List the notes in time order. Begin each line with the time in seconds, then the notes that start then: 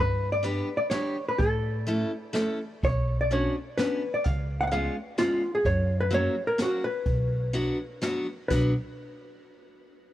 0.00 G2 B4
0.32 D5
0.43 G3 B3 D4 G4 B4, closed hi-hat
0.77 D5
0.90 G3 B3 D4 G4 C#5, snare, closed hi-hat
1.29 B4
1.39 A2 A4, kick, closed hi-hat
1.87 A3 C#4 E4 A4, closed hi-hat
2.33 A3 C#4 E4 A4, snare, closed hi-hat
2.83 B1 C#5, kick, closed hi-hat
3.21 D5
3.31 B3 C#4 D4 F#4 C#5, closed hi-hat
3.77 B3 C#4 D4 F#4 B4, snare, closed hi-hat
4.14 D5
4.24 C#2 F5, kick, closed hi-hat
4.60 F5 F#5
4.67 F#5
4.71 G#3 B3 C#4 F4 F5, closed hi-hat
5.18 G#3 B3 C#4 F4, snare, closed hi-hat
5.54 G#4
5.65 F#2 C#5, kick, closed hi-hat
6.00 B4
6.10 F#3 A#3 C#4 F#4 C#5, closed hi-hat
6.47 A#4
6.58 F#3 A#3 C#4 F#4, snare, closed hi-hat
6.62 F#4
6.84 B4
7.06 B1, kick, closed hi-hat
7.53 F#3 B3 D4 F#4, closed hi-hat
8.01 F#3 B3 D4 F#4, snare, closed hi-hat
8.48 B1 F#3 B3 D4 F#4 B4, kick, crash